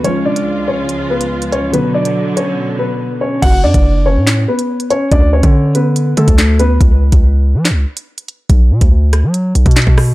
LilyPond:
<<
  \new Staff \with { instrumentName = "Grand piano" } { \time 4/4 \key fis \minor \tempo 4 = 142 <cis' cis''>8 <d' d''>4 <cis' cis''>4 <b b'>4 <cis' cis''>8 | <b b'>8 <d' d''>4 <cis' cis''>4 <b b'>4 <cis' cis''>8 | <fis' fis''>8 <d' d''>4 <cis' cis''>4 <b b'>4 <cis' cis''>8 | <d' d''>8 <cis' cis''>4 <b b'>4 <a a'>4 <b b'>8 |
r1 | r1 | }
  \new Staff \with { instrumentName = "Felt piano" } { \clef bass \time 4/4 \key fis \minor <eis gis eis'>1 | <d fis b>1 | r1 | r1 |
r1 | r1 | }
  \new Staff \with { instrumentName = "String section" } { \clef bass \time 4/4 \key fis \minor <cis, eis gis eis'>1 | <b, d fis b>1 | r1 | r1 |
r1 | r1 | }
  \new Staff \with { instrumentName = "808-style bass" } { \clef bass \time 4/4 \key fis \minor r1 | r1 | fis,,8 fis,16 fis,,4 a,8. r4. | d,8. d4.~ d16 d16 d,4~ d,16 |
cis,8. cis,4 eis16. cis,16. r4. | b,,8 b,16 d,4 fis8. b,,16 b,8 b,8. | }
  \new DrumStaff \with { instrumentName = "Drums" } \drummode { \time 4/4 hh8. hh16 r4 hh8. hh16 r16 hh16 hh8 | hh8. hh16 r8 hh8 r4 r4 | <cymc hh bd>8. <hh bd>16 r4 <hc hh sn>8. hh16 r16 hh16 hh8 | <hh bd>8. <hh bd>16 r8 hh8 hh8 hh16 <hh bd>16 <hc hh sn>8 hh8 |
<hh bd>8. <hh bd>16 r4 <hc hh sn>8. hh16 r16 hh16 hh8 | <hh bd>8. <hh bd>16 r8 <hh ss>8 hh8 hh16 <hh bd>32 hh32 <hc hh sn>32 hh32 bd16 <hho ss>8 | }
>>